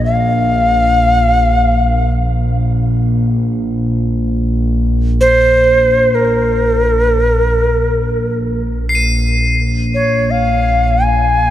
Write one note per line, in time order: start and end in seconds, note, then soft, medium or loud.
0.00 8.57 A#1 medium
0.05 2.11 F5 medium
5.21 6.16 C5 loud
6.15 8.38 A#4 medium
8.58 11.50 A#1 medium
8.89 11.50 C7 soft
8.95 11.50 D#7 soft
9.94 10.32 C#5 medium
10.31 11.06 F5 medium
11.04 11.50 G#5 medium